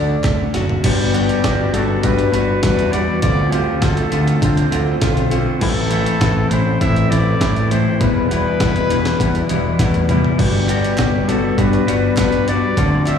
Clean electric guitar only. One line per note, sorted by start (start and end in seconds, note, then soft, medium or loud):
0.00 0.83 D3 medium
0.00 0.23 A3 medium
0.00 0.83 D4 medium
0.24 0.84 A3 medium
0.54 0.84 F#4 medium
0.84 1.11 G3 loud
0.84 1.13 B3 loud
0.84 1.13 D4 loud
0.84 1.13 F#4 loud
1.13 1.41 G3 medium
1.13 1.42 B3 medium
1.13 1.43 D4 medium
1.13 1.43 F#4 medium
1.42 1.71 G3 medium
1.42 1.72 B3 medium
1.42 1.73 D4 medium
1.42 1.73 F#4 medium
1.73 2.01 G3 medium
1.73 2.02 B3 loud
1.73 2.02 D4 loud
1.73 2.02 F#4 loud
2.02 2.30 G3 medium
2.02 2.31 B3 medium
2.02 2.31 D4 medium
2.02 2.32 F#4 medium
2.32 2.60 G3 loud
2.32 2.61 B3 loud
2.32 2.61 D4 medium
2.32 2.62 F#4 loud
2.61 2.91 G3 medium
2.61 2.91 B3 medium
2.61 2.92 D4 medium
2.61 2.92 F#4 loud
2.92 3.20 G3 medium
2.92 3.21 B3 medium
2.92 3.21 D4 medium
2.92 3.21 F#4 medium
3.21 3.50 D3 medium
3.21 3.51 A3 medium
3.21 3.52 C4 loud
3.21 3.51 F4 loud
3.51 3.79 D3 medium
3.51 3.81 A3 medium
3.51 3.81 C4 medium
3.51 3.81 F4 loud
3.81 4.09 D3 medium
3.81 4.10 A3 medium
3.81 4.11 C4 medium
3.81 4.10 F4 loud
4.10 4.39 D3 medium
4.10 4.39 A3 loud
4.10 4.40 C4 medium
4.10 4.41 F4 loud
4.40 4.69 D3 medium
4.40 4.70 A3 medium
4.40 4.70 C4 medium
4.40 4.70 F4 medium
4.70 4.99 D3 medium
4.70 5.00 A3 loud
4.70 5.00 C4 loud
4.70 5.00 F4 loud
5.00 5.29 D3 medium
5.00 5.29 A3 medium
5.00 5.30 C4 loud
5.00 5.30 F4 loud
5.30 5.59 D3 medium
5.30 5.59 A3 medium
5.30 5.59 C4 medium
5.30 5.60 F4 medium
5.60 5.88 A2 loud
5.60 5.90 E3 medium
5.60 5.89 A3 medium
5.60 5.90 C4 loud
5.60 5.90 E4 loud
5.89 6.18 A2 medium
5.89 6.20 E3 medium
5.89 6.19 A3 medium
5.89 6.20 C4 loud
5.89 6.21 E4 loud
6.19 6.48 A2 medium
6.19 6.50 E3 medium
6.19 6.49 A3 loud
6.19 6.50 C4 medium
6.19 6.51 E4 medium
6.50 6.79 A2 medium
6.50 6.79 E3 medium
6.50 6.80 A3 loud
6.50 6.80 C4 loud
6.50 6.80 E4 loud
6.80 7.09 A2 medium
6.80 7.10 E3 medium
6.80 7.10 A3 medium
6.80 7.10 C4 medium
6.80 7.11 E4 medium
7.10 7.38 A2 medium
7.10 7.39 E3 medium
7.10 7.39 A3 loud
7.10 7.40 C4 loud
7.10 7.40 E4 loud
7.39 7.69 A2 medium
7.39 7.70 E3 medium
7.39 7.70 A3 loud
7.39 7.70 C4 loud
7.39 7.71 E4 medium
7.70 7.98 A2 medium
7.70 7.99 E3 medium
7.70 7.99 A3 medium
7.70 7.99 C4 medium
7.70 7.99 E4 medium
7.99 8.28 E2 medium
7.99 8.28 B2 loud
7.99 8.29 E3 medium
7.99 8.30 G3 medium
7.99 8.30 B3 loud
7.99 8.30 E4 loud
8.29 8.58 E2 medium
8.29 8.59 B2 medium
8.29 8.59 E3 medium
8.29 8.60 G3 medium
8.29 8.60 B3 medium
8.29 8.60 E4 loud
8.59 8.88 E2 medium
8.59 8.89 B2 medium
8.59 8.88 E3 loud
8.59 8.90 G3 medium
8.59 8.90 B3 medium
8.59 8.90 E4 medium
8.89 9.18 E2 medium
8.89 9.19 B2 medium
8.89 9.19 E3 loud
8.89 9.20 G3 medium
8.89 9.20 B3 medium
8.89 9.20 E4 loud
9.20 9.47 E2 medium
9.20 9.47 B2 medium
9.20 9.47 E3 medium
9.20 9.48 G3 medium
9.20 9.49 B3 loud
9.20 9.49 E4 loud
9.48 9.77 E2 loud
9.48 9.77 B2 loud
9.48 9.78 E3 loud
9.48 9.79 G3 loud
9.48 9.79 B3 loud
9.48 9.79 E4 loud
9.78 10.07 E2 medium
9.78 10.07 B2 medium
9.78 10.08 E3 medium
9.78 10.08 G3 medium
9.78 10.08 B3 medium
9.78 10.09 E4 medium
10.08 10.37 E2 medium
10.08 10.37 B2 medium
10.08 10.37 E3 medium
10.08 10.36 G3 medium
10.08 10.37 B3 medium
10.08 10.37 E4 loud
10.37 10.66 G3 medium
10.37 10.67 B3 loud
10.37 10.68 D4 medium
10.37 10.68 F#4 loud
10.68 10.96 G3 medium
10.68 10.97 B3 medium
10.68 10.98 D4 loud
10.68 10.98 F#4 medium
10.97 11.27 G3 medium
10.97 11.27 B3 medium
10.97 11.28 D4 medium
10.97 11.27 F#4 medium
11.28 11.55 G3 medium
11.28 11.56 B3 medium
11.28 11.56 D4 medium
11.28 11.57 F#4 loud
11.56 11.86 G3 medium
11.56 11.86 B3 medium
11.56 11.86 D4 medium
11.56 11.87 F#4 medium
11.87 12.16 G3 medium
11.87 12.17 B3 loud
11.87 12.17 D4 loud
11.87 12.17 F#4 loud
12.17 12.47 G3 medium
12.17 12.47 B3 medium
12.17 12.47 D4 medium
12.17 12.48 F#4 medium
12.48 12.76 G3 medium
12.48 12.76 B3 loud
12.48 12.76 D4 loud
12.48 12.76 F#4 loud
12.77 13.05 D3 medium
12.77 13.06 F3 medium
12.77 13.07 C4 loud
12.77 13.07 D4 loud
12.77 13.08 A4 loud
13.06 13.19 D3 medium
13.06 13.19 F3 medium
13.06 13.19 C4 loud
13.06 13.19 D4 medium
13.06 13.19 A4 medium